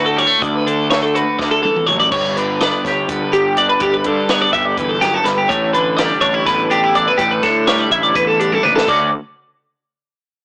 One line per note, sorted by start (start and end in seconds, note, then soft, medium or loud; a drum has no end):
0.00 0.24 D2 medium
0.00 0.38 D2 medium
0.00 0.42 A2 medium
0.00 0.66 D3 medium
0.00 0.16 A3 soft
0.00 0.39 F#4 medium
0.06 0.18 A4 medium
0.16 0.27 G3 medium
0.16 0.42 C#5 medium
0.16 closed hi-hat medium
0.27 0.41 A3 soft
0.39 1.38 D2 medium
0.39 1.21 D2 medium
0.39 0.55 D5 medium
0.39 kick loud
0.39 closed hi-hat medium
0.55 0.67 B4 medium
0.67 2.37 D3 medium
0.67 0.90 A4 medium
0.67 closed hi-hat medium
0.91 2.10 A3 medium
0.91 1.02 C#5 medium
0.91 snare loud
0.91 closed hi-hat medium
1.03 1.15 A4 medium
1.15 2.09 F#4 soft
1.15 1.39 B4 medium
1.15 closed hi-hat medium
1.39 1.59 D2 medium
1.39 1.63 D2 medium
1.39 1.51 D5 medium
1.39 kick loud
1.39 snare medium
1.51 1.62 A4 medium
1.63 1.88 E2 medium
1.63 1.87 A4 medium
1.63 high tom medium
1.76 mid tom medium
1.87 2.07 A1 medium
1.87 2.12 F#2 medium
1.87 1.99 C#5 medium
1.87 mid tom medium
2.00 2.11 D5 medium
2.00 floor tom medium
2.12 2.71 G1 medium
2.12 3.79 G2 medium
2.12 2.37 C#5 medium
2.12 kick loud
2.12 crash loud
2.37 3.09 D3 medium
2.37 2.61 B4 medium
2.37 closed hi-hat medium
2.61 3.80 B3 medium
2.61 2.84 D5 medium
2.61 snare loud
2.61 closed hi-hat medium
2.84 3.04 G1 medium
2.84 3.33 G4 medium
2.84 3.09 C#5 medium
2.84 kick medium
2.84 snare soft
2.84 closed hi-hat medium
3.09 3.67 G1 medium
3.09 3.79 D3 medium
3.09 3.33 B4 medium
3.09 kick loud
3.09 closed hi-hat loud
3.33 3.57 G4 medium
3.33 4.54 G4 medium
3.33 closed hi-hat medium
3.57 4.81 D4 medium
3.57 3.69 D5 medium
3.57 closed hi-hat medium
3.69 3.81 B4 medium
3.80 4.01 G1 medium
3.80 4.77 G2 medium
3.80 3.94 G4 medium
3.80 kick loud
3.80 closed hi-hat medium
3.94 4.07 B4 medium
4.04 4.44 G2 loud
4.04 5.73 D3 medium
4.04 4.30 A4 medium
4.04 kick medium
4.04 closed hi-hat medium
4.29 5.47 B3 medium
4.29 4.41 C#5 medium
4.29 snare loud
4.29 closed hi-hat medium
4.42 4.52 D5 medium
4.53 4.73 G1 medium
4.53 5.53 G4 medium
4.53 4.65 E5 medium
4.53 kick medium
4.53 closed hi-hat medium
4.65 4.77 D5 medium
4.77 5.17 G1 medium
4.77 5.01 E2 medium
4.77 4.89 B4 medium
4.77 kick loud
4.77 closed hi-hat medium
4.89 5.02 A4 medium
5.01 5.23 F#2 medium
5.01 5.14 G4 medium
5.01 snare soft
5.01 closed hi-hat medium
5.14 5.26 A4 medium
5.24 5.45 G1 medium
5.24 5.49 G2 medium
5.24 5.38 B4 medium
5.24 snare soft
5.24 closed hi-hat medium
5.38 5.50 G4 medium
5.49 6.08 A1 medium
5.49 5.74 A2 medium
5.49 5.73 C#5 medium
5.49 kick loud
5.49 closed hi-hat medium
5.73 7.41 D3 medium
5.73 5.97 B4 medium
5.73 closed hi-hat medium
5.97 7.67 G3 medium
5.97 6.21 D5 medium
5.97 snare loud
5.97 closed hi-hat medium
6.21 6.42 A1 medium
6.21 6.34 D4 medium
6.21 6.46 C#5 medium
6.21 kick medium
6.21 closed hi-hat medium
6.34 6.70 E4 medium
6.45 7.05 A1 medium
6.45 7.15 E2 medium
6.45 6.71 B4 medium
6.45 kick loud
6.45 snare soft
6.45 closed hi-hat medium
6.70 6.84 D4 medium
6.70 6.95 G4 medium
6.70 closed hi-hat medium
6.84 7.19 E4 medium
6.95 7.95 D4 medium
6.95 7.07 D5 medium
6.95 closed hi-hat medium
7.08 7.19 B4 medium
7.18 7.38 A1 loud
7.18 7.43 A2 medium
7.18 7.30 G4 loud
7.18 kick loud
7.18 closed hi-hat loud
7.31 7.43 B4 medium
7.43 7.82 A2 loud
7.43 8.87 D3 medium
7.43 7.67 A4 medium
7.43 kick medium
7.43 snare soft
7.43 closed hi-hat medium
7.67 8.88 G3 medium
7.67 7.79 C#5 medium
7.67 snare loud
7.67 closed hi-hat loud
7.79 7.91 D5 medium
7.91 8.11 A1 medium
7.91 8.39 E4 medium
7.91 8.03 E5 medium
7.91 kick medium
7.91 closed hi-hat medium
8.03 8.15 D5 medium
8.15 8.54 A1 medium
8.15 8.85 E2 medium
8.15 8.27 B4 medium
8.15 kick loud
8.15 closed hi-hat loud
8.27 8.40 A4 medium
8.40 8.53 D4 medium
8.40 8.52 G4 medium
8.40 closed hi-hat medium
8.52 8.88 E4 medium
8.52 8.63 A4 medium
8.52 high tom medium
8.63 8.83 A1 medium
8.63 8.84 D4 medium
8.63 8.75 B4 medium
8.63 mid tom medium
8.76 8.87 A4 medium
8.76 snare loud
8.87 9.09 D2 medium
8.87 9.10 D2 medium
8.87 9.09 D3 medium
8.87 9.10 A3 medium
8.87 9.10 C#4 medium
8.87 9.10 F#4 medium
8.87 9.10 D5 medium
8.87 kick loud
8.87 crash medium